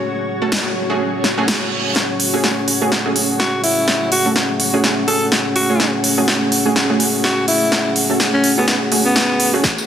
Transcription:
0.00 1.92 A3 medium
0.00 1.92 C#4 medium
0.00 9.86 F#4 medium
0.00 1.92 G#4 medium
0.00 1.95 C#5 medium
0.00 9.86 C#5 medium
0.41 0.62 A3 medium
0.41 0.62 C#4 medium
0.41 0.62 F#4 medium
0.41 0.62 A4 medium
0.52 snare loud
0.90 1.21 A3 medium
0.90 1.21 C#4 medium
0.90 1.21 F#4 medium
0.90 1.21 G#4 medium
1.00 reverse cymbal medium
1.24 snare soft
1.37 1.49 A3 medium
1.37 1.49 C#4 medium
1.37 1.49 F#4 medium
1.37 1.49 G#4 loud
1.48 snare loud
1.96 9.86 A3 medium
1.96 9.86 C#4 medium
1.96 9.86 G#4 medium
1.96 9.86 F#5 medium
1.96 snare soft
2.20 open hi-hat loud
2.33 2.54 A3 medium
2.33 2.54 C#4 medium
2.33 2.54 F#4 medium
2.33 2.54 G#4 loud
2.44 snare soft
2.68 open hi-hat loud
2.81 2.93 A3 medium
2.81 2.93 C#4 medium
2.81 2.93 F#4 medium
2.81 2.93 G#4 medium
2.92 snare soft
3.05 3.17 A3 medium
3.05 3.17 C#4 medium
3.05 3.17 F#4 medium
3.05 3.17 G#4 medium
3.16 open hi-hat loud
3.40 3.59 F#4 medium
3.40 snare soft
3.64 4.10 E4 medium
3.64 open hi-hat loud
3.88 snare medium
4.12 4.31 F#4 medium
4.12 open hi-hat loud
4.25 4.46 A3 medium
4.25 4.46 C#4 medium
4.25 4.46 F#4 medium
4.25 4.46 A4 medium
4.36 snare medium
4.60 open hi-hat loud
4.73 5.05 A3 medium
4.73 5.05 C#4 medium
4.73 5.05 F#4 medium
4.73 5.05 G#4 loud
4.84 snare medium
5.08 5.22 A3 medium
5.08 5.22 C#4 medium
5.08 5.22 F#4 medium
5.08 5.22 G#4 medium
5.08 5.27 A4 medium
5.08 open hi-hat loud
5.32 snare medium
5.56 5.94 F#4 medium
5.56 open hi-hat loud
5.70 5.81 A3 medium
5.70 5.81 C#4 medium
5.70 5.81 F#4 medium
5.70 5.81 G#4 loud
5.80 snare medium
6.04 open hi-hat loud
6.18 6.38 A3 medium
6.18 6.38 C#4 medium
6.18 6.38 F#4 medium
6.18 6.38 G#4 loud
6.28 snare medium
6.52 open hi-hat loud
6.66 6.77 A3 medium
6.66 6.77 C#4 medium
6.66 6.77 F#4 medium
6.66 6.77 G#4 loud
6.76 snare medium
6.90 7.01 A3 medium
6.90 7.01 C#4 medium
6.90 7.01 F#4 medium
6.90 7.01 G#4 medium
7.00 open hi-hat loud
7.24 7.44 F#4 medium
7.24 snare medium
7.48 7.94 E4 medium
7.48 open hi-hat loud
7.72 snare medium
7.96 open hi-hat loud
8.10 8.30 A3 medium
8.10 8.30 C#4 medium
8.10 8.30 F#4 medium
8.10 8.30 A4 medium
8.20 snare medium
8.34 8.52 C#4 medium
8.44 open hi-hat loud
8.58 8.89 A3 medium
8.58 8.64 B3 medium
8.58 8.89 C#4 medium
8.58 8.89 F#4 medium
8.58 8.89 G#4 loud
8.68 8.77 B3 medium
8.68 snare medium
8.92 9.06 A3 medium
8.92 9.06 C#4 medium
8.92 9.06 F#4 medium
8.92 9.06 G#4 medium
8.92 open hi-hat loud
9.06 9.54 B3 medium
9.16 snare medium
9.40 open hi-hat loud
9.53 9.64 A3 medium
9.53 9.64 C#4 medium
9.53 9.64 F#4 medium
9.53 9.64 G#4 loud
9.64 kick loud
9.64 snare medium
9.64 closed hi-hat medium
9.64 tambourine medium
9.78 tambourine soft

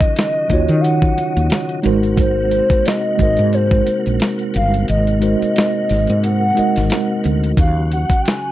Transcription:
0.00 1.80 C#3 medium
0.00 1.80 F#3 medium
0.00 1.80 D#4 medium
0.00 0.82 D#5 loud
0.00 muted fretless electric bass stroke soft
0.00 kick loud
0.00 closed hi-hat soft
0.16 snare loud
0.16 closed hi-hat medium
0.49 0.66 D#2 medium
0.49 0.74 D#3 medium
0.49 0.74 D#4 medium
0.49 0.75 F4 medium
0.49 0.75 F#4 medium
0.49 kick medium
0.49 closed hi-hat medium
0.53 0.76 C#5 medium
0.68 1.11 D#3 loud
0.68 closed hi-hat medium
0.81 1.83 F#5 loud
0.81 closed hi-hat medium
1.02 kick medium
1.18 muted fretless electric bass stroke medium
1.18 closed hi-hat medium
1.37 1.49 D#2 medium
1.37 closed hi-hat soft
1.50 snare loud
1.50 closed hi-hat medium
1.69 closed hi-hat soft
1.82 2.59 G#1 loud
1.82 7.52 C3 medium
1.82 3.12 G#3 medium
1.82 7.52 A#3 medium
1.82 3.12 D#4 medium
1.82 7.52 F#4 medium
1.82 3.13 F#4 medium
1.82 3.13 A#4 medium
1.82 closed hi-hat medium
1.87 3.14 C5 loud
2.03 closed hi-hat medium
2.17 2.88 C5 loud
2.17 kick loud
2.17 closed hi-hat medium
2.51 closed hi-hat medium
2.70 muted fretless electric bass stroke soft
2.70 kick loud
2.70 closed hi-hat soft
2.86 3.19 D#5 loud
2.86 snare loud
2.86 closed hi-hat medium
3.17 3.36 G#1 medium
3.17 4.13 G#3 medium
3.17 4.14 D#4 medium
3.17 4.14 F#4 medium
3.17 3.55 D#5 loud
3.17 kick medium
3.17 closed hi-hat medium
3.21 4.15 A#4 medium
3.21 4.16 C5 medium
3.37 3.80 G#2 medium
3.37 closed hi-hat soft
3.53 4.21 C5 loud
3.53 closed hi-hat medium
3.71 kick loud
3.87 muted fretless electric bass stroke soft
3.87 closed hi-hat medium
4.06 4.19 A#1 medium
4.06 closed hi-hat soft
4.20 snare loud
4.20 closed hi-hat medium
4.39 closed hi-hat soft
4.54 4.84 G1 medium
4.54 4.86 F5 medium
4.54 closed hi-hat medium
4.74 closed hi-hat medium
4.88 5.34 G#1 medium
4.88 6.19 D#5 loud
4.88 closed hi-hat medium
5.07 closed hi-hat soft
5.19 5.45 G#3 medium
5.19 5.45 D#4 medium
5.19 5.46 F#4 medium
5.19 5.47 A#4 medium
5.19 closed hi-hat medium
5.24 5.47 C5 medium
5.42 muted fretless electric bass stroke soft
5.42 closed hi-hat soft
5.56 snare loud
5.56 closed hi-hat medium
5.89 6.06 G#1 medium
5.89 snare soft
5.89 closed hi-hat medium
6.07 6.51 G#2 medium
6.07 closed hi-hat soft
6.24 7.20 F#5 loud
6.24 closed hi-hat medium
6.54 6.80 G#3 medium
6.54 6.80 D#4 medium
6.54 6.81 F#4 medium
6.54 6.82 A#4 medium
6.54 closed hi-hat medium
6.59 6.82 D#5 medium
6.59 muted fretless electric bass stroke soft
6.76 6.89 G#1 medium
6.76 snare soft
6.76 closed hi-hat medium
6.90 snare loud
6.90 closed hi-hat medium
7.24 7.54 D2 medium
7.24 closed hi-hat medium
7.44 closed hi-hat medium
7.57 8.03 D#2 medium
7.57 8.52 C#3 medium
7.57 8.52 F#3 medium
7.57 8.52 F#4 medium
7.57 7.90 F5 loud
7.57 kick loud
7.57 closed hi-hat medium
7.92 8.22 F#5 loud
7.92 closed hi-hat medium
8.10 muted fretless electric bass stroke soft
8.10 kick loud
8.10 closed hi-hat soft
8.21 8.29 G5 medium
8.26 8.52 G#5 loud
8.26 snare loud
8.26 closed hi-hat medium

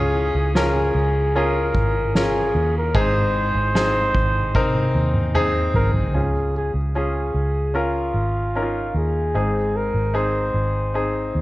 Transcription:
0.00 0.31 C#2 loud
0.00 0.92 C#3 medium
0.00 0.52 C#4 medium
0.00 0.52 F4 medium
0.00 0.52 G#4 medium
0.00 0.52 G#4 loud
0.14 ride medium
0.35 0.91 C#2 medium
0.54 1.31 C#4 medium
0.54 1.31 F4 medium
0.54 1.37 G#4 medium
0.54 1.32 A#4 medium
0.54 snare loud
0.54 ride medium
0.95 1.71 C#2 medium
0.95 ride medium
1.35 2.11 C#4 medium
1.35 2.11 F4 medium
1.35 2.12 G#4 medium
1.35 2.18 A#4 medium
1.35 ride medium
1.74 2.51 G#1 medium
1.74 kick medium
1.74 ride medium
2.14 2.91 C#4 medium
2.14 2.92 F4 medium
2.14 2.76 G#4 medium
2.14 2.92 A#4 medium
2.14 snare loud
2.14 ride medium
2.55 2.92 D#2 medium
2.55 ride soft
2.75 3.00 A#4 medium
2.75 ride soft
2.94 3.51 G#1 loud
2.94 4.11 G#2 medium
2.94 3.71 C4 medium
2.94 3.71 D#4 medium
2.94 3.71 G#4 medium
2.94 kick loud
2.99 5.37 C5 loud
3.34 ride medium
3.55 4.11 G#1 medium
3.74 4.51 C4 medium
3.74 4.51 D#4 medium
3.74 4.51 G#4 medium
3.74 snare loud
3.74 ride medium
4.14 4.91 G#1 medium
4.14 kick medium
4.14 ride medium
4.35 ride soft
4.55 5.31 C4 medium
4.55 5.31 D#4 medium
4.55 5.31 A#4 medium
4.55 kick medium
4.55 high tom medium
4.75 high tom medium
4.95 5.71 D#2 medium
5.14 mid tom medium
5.34 6.11 C4 medium
5.34 6.11 D#4 medium
5.34 6.11 G#4 medium
5.34 mid tom medium
5.74 6.12 G#1 medium
5.74 5.92 A#4 medium
5.74 floor tom loud
5.94 floor tom medium
6.14 6.71 C#2 medium
6.14 7.31 C#3 soft
6.14 6.91 C#4 soft
6.14 6.91 F4 soft
6.14 6.91 G#4 medium
6.14 6.53 G#4 medium
6.57 6.73 G#4 medium
6.74 7.31 C#2 medium
6.95 7.71 C#4 medium
6.95 7.72 F4 soft
6.95 7.72 G#4 medium
6.95 7.78 G#4 medium
7.34 8.11 C#2 medium
7.74 8.51 C#4 medium
7.74 8.51 F4 medium
7.74 8.96 F4 medium
7.74 8.51 A#4 medium
8.14 8.91 G#1 medium
8.55 9.31 C#4 medium
8.55 8.62 D#4 soft
8.55 9.32 A#4 medium
8.63 9.35 F4 soft
8.95 9.32 D#2 medium
8.95 9.78 G#4 medium
9.34 9.91 G#1 medium
9.34 10.51 G#2 soft
9.34 10.11 C4 medium
9.34 10.11 D#4 soft
9.34 10.11 G#4 medium
9.77 10.18 A#4 medium
9.94 10.51 G#1 medium
10.14 10.91 C4 medium
10.14 10.91 D#4 medium
10.14 10.91 G#4 medium
10.14 10.96 C5 medium
10.54 11.31 G#1 medium
10.94 11.41 C4 medium
10.94 11.41 D#4 medium
10.94 11.41 G#4 medium
11.35 11.41 D#2 medium

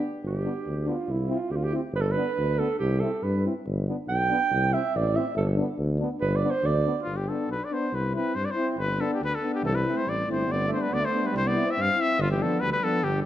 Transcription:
0.23 0.46 G1 medium
0.23 0.90 G4 medium
0.43 0.53 B3 medium
0.43 0.52 D4 medium
0.66 0.90 D2 medium
0.86 0.96 B3 soft
0.86 0.94 D4 medium
0.86 1.12 F4 medium
1.08 1.32 C2 medium
1.08 1.34 E4 medium
1.28 1.37 C4 medium
1.28 1.38 E4 medium
1.33 1.53 F4 medium
1.50 1.74 D2 medium
1.50 1.58 G4 medium
1.56 1.65 F4 medium
1.64 1.74 G4 medium
1.72 1.82 C4 medium
1.72 1.81 E4 medium
1.92 2.16 G1 loud
1.92 2.03 B4 medium
2.01 2.13 A4 medium
2.12 2.60 B4 loud
2.16 2.26 B3 medium
2.16 2.24 D4 medium
2.38 2.61 D2 medium
2.59 2.68 B3 medium
2.59 2.67 D4 medium
2.59 2.78 A4 medium
2.79 3.04 C2 loud
2.79 3.01 G4 medium
3.00 3.11 C4 medium
3.00 3.10 E4 medium
3.00 3.25 A4 medium
3.23 3.47 G2 medium
3.23 3.45 B4 medium
3.45 3.54 C4 soft
3.45 3.54 E4 soft
3.66 3.89 G1 loud
3.88 3.96 B3 medium
3.88 3.97 D4 medium
4.08 4.32 B1 medium
4.08 4.75 G5 medium
4.28 4.40 B3 medium
4.28 4.37 D4 medium
4.51 4.74 C2 medium
4.71 4.82 C4 medium
4.71 4.80 E4 medium
4.71 4.98 E5 medium
4.95 5.18 A1 medium
4.95 5.17 D5 medium
5.14 5.25 C4 medium
5.14 5.23 E4 medium
5.14 5.37 E5 medium
5.36 5.60 G1 loud
5.36 5.47 A4 medium
5.57 5.68 B3 medium
5.57 5.65 D4 medium
5.78 6.02 D2 medium
5.99 6.10 B3 medium
5.99 6.08 D4 medium
6.20 6.44 G1 loud
6.20 6.37 B4 medium
6.36 6.52 D5 medium
6.43 6.52 B3 medium
6.43 6.52 D4 medium
6.50 6.67 C5 medium
6.63 6.87 D2 loud
6.63 7.08 D5 medium
6.85 6.95 B3 medium
6.85 6.93 D4 medium
7.03 7.30 G1 medium
7.03 7.18 F4 medium
7.16 7.30 G4 medium
7.27 7.49 B3 soft
7.27 7.49 D4 medium
7.27 7.50 A4 medium
7.47 7.60 B1 medium
7.52 7.66 B4 medium
7.64 7.74 D5 medium
7.70 7.92 B3 medium
7.70 7.91 D4 soft
7.70 7.96 C5 medium
7.92 8.15 C2 medium
7.92 8.15 B4 medium
8.12 8.35 C4 medium
8.12 8.34 E4 medium
8.12 8.36 B4 medium
8.35 8.47 G2 medium
8.35 8.46 C5 medium
8.45 8.52 D5 medium
8.51 8.68 C5 medium
8.55 8.78 C4 medium
8.55 8.77 E4 medium
8.77 9.01 G1 medium
8.77 9.02 B4 medium
9.00 9.20 B3 medium
9.00 9.21 D4 medium
9.00 9.11 A4 medium
9.14 9.22 G4 medium
9.21 9.32 D2 medium
9.21 9.36 B4 medium
9.35 9.54 A4 medium
9.43 9.63 B3 medium
9.43 9.64 D4 soft
9.54 9.63 G4 medium
9.63 9.86 C2 loud
9.63 9.76 E3 medium
9.63 9.77 A4 medium
9.74 9.96 G3 medium
9.74 9.98 B4 medium
9.85 10.06 C4 medium
9.85 10.06 E4 medium
9.95 10.05 A3 medium
9.95 10.10 C5 medium
10.03 10.25 A1 medium
10.03 10.26 G3 medium
10.09 10.29 D5 medium
10.26 10.47 G1 medium
10.26 10.48 A3 medium
10.26 10.49 C4 soft
10.26 10.48 E4 soft
10.32 10.53 C5 medium
10.46 10.71 G1 medium
10.46 10.67 B3 medium
10.51 10.71 D5 medium
10.67 10.80 A3 medium
10.67 10.91 B3 soft
10.67 10.91 D4 medium
10.73 10.83 C5 medium
10.78 10.90 G3 medium
10.78 10.95 B4 medium
10.89 11.02 D2 medium
10.89 11.02 B3 medium
10.93 11.07 D5 medium
11.01 11.24 A3 medium
11.05 11.28 C5 medium
11.11 11.34 B3 medium
11.11 11.32 D4 soft
11.23 11.30 G3 medium
11.23 11.35 B4 medium
11.31 11.57 C2 medium
11.31 11.46 G3 medium
11.37 11.49 C5 medium
11.45 11.67 B3 medium
11.45 11.72 D5 medium
11.55 11.76 C4 medium
11.55 11.75 E4 medium
11.66 11.76 C4 medium
11.71 11.83 E5 medium
11.76 11.89 G2 medium
11.76 11.97 C4 medium
11.81 12.02 F5 medium
11.95 12.21 C4 medium
11.95 12.17 E4 medium
12.00 12.20 C4 medium
12.00 12.22 E5 medium
12.18 12.42 G1 loud
12.18 12.30 D3 medium
12.18 12.30 F4 medium
12.30 12.42 E3 medium
12.30 12.44 G4 medium
12.37 12.62 F3 medium
12.37 12.59 D4 medium
12.42 12.62 B3 medium
12.42 12.62 A4 medium
12.60 12.73 D2 medium
12.60 12.71 G3 medium
12.60 12.71 B4 medium
12.71 12.84 G3 medium
12.71 12.85 B4 medium
12.81 13.04 F3 medium
12.81 13.03 B3 medium
12.81 13.02 D4 medium
12.81 13.05 A4 medium
13.02 13.26 G1 medium
13.02 13.24 D3 medium
13.02 13.22 G4 medium
13.22 13.26 G4 medium

